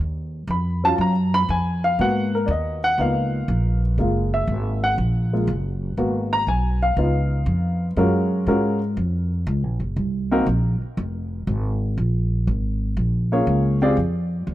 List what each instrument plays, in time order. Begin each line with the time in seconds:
0.00 upright bass D#2
0.47 upright bass F2, grand piano B5
0.84 grand piano F#3 C#4 F4 A5
0.97 upright bass F#2, grand piano A5
1.01 grand piano A#5
1.34 grand piano B5
1.49 upright bass F2, grand piano G#5
1.84 grand piano F5
1.99 upright bass G#2, grand piano A#3 B3 F#4 F#5
2.35 grand piano A#4
2.46 upright bass D#2, grand piano D5
2.51 grand piano D#5
2.84 grand piano F#5
2.98 upright bass C#2, grand piano A#3 B3 D#4 F4 F5
3.48 upright bass A#1
3.98 upright bass F#1, grand piano G#3 A#3 F4
4.34 grand piano E5
4.47 upright bass G#1
4.84 grand piano F#5
4.98 upright bass A#1
5.33 grand piano G#3 A#3 F4
5.47 upright bass F#1
5.97 upright bass G#1, grand piano A#3 B3 F#4
6.33 grand piano A#5
6.47 upright bass B1, grand piano G#5
6.82 grand piano F5
6.97 upright bass C#2, grand piano B3 D#4 F4
7.46 upright bass F2
7.96 upright bass F#2, grand piano G#3 C#4 F4 F#4 A#4
8.47 upright bass G#2, grand piano G#3 C#4 F4 F#4 A#4
8.97 upright bass F2
9.47 upright bass C#2
9.63 upright bass A#1
9.80 upright bass F#1
9.96 upright bass C2
10.31 grand piano A#3 C4 D#4 F#4 A#4
10.46 upright bass A#1
10.81 muted upright bass stroke
10.97 upright bass F1
11.47 upright bass G#1
11.97 upright bass A#1
12.47 upright bass G#1
12.97 upright bass A#1
13.32 grand piano A#3 C#4 F4 G#4 C#5
13.47 upright bass C#2
13.82 grand piano C4 F4 G4 G#4 D5
13.97 upright bass F2
14.47 upright bass D#2